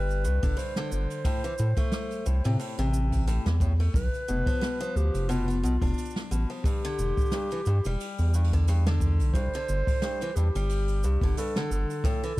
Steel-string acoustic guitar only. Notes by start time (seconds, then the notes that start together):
Already playing: G3
0.24 G2
0.43 D3
0.57 G2
0.77 D3
1.25 A2
1.44 E3
1.59 A2
1.77 A3
2.26 A2
2.45 C3
2.60 A2
2.79 C3
3.27 A2
3.46 E3
3.61 A2
3.80 A3
4.28 B2
4.47 F3
4.61 B2
4.81 F3
5.29 B2
5.48 B3
5.63 B2
5.82 D4
6.31 B2
6.50 F3
6.65 G2
6.85 D3
7.33 G2
7.52 E3
7.67 G2
7.86 G3
8.35 G2
8.53 D3
8.68 G2
8.87 D3
9.35 G2
9.55 D3
10.04 G2
10.22 E3
10.37 G2
10.56 G3
11.04 G2
11.23 D3
11.38 G2
11.56 D3
12.05 A2
12.23 E3